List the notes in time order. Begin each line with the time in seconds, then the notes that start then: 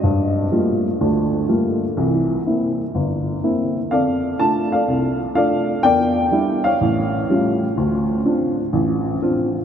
0.03 G2
0.52 G3 A3 A#3 F4
1.01 D2 D3
1.49 G3 A3 A#3 F4
1.97 C2 E3
2.46 A#3 C4 E4
2.95 G1
3.43 A#3 C4 E4
3.91 F2 A4 D5 F5
4.39 A3 D4 F4 A5
4.72 A4 D5 F5
4.88 C2
5.35 A3 D4 F4 A4 D5 F5
5.83 E2 A#4 D5 G5
6.31 G3 D4 E4
6.64 C#5 F5
6.81 A1
7.30 G3 A3 C#4 F4
7.77 D2
8.25 C4 D4 F4
8.73 A1
9.21 C4 D4 F4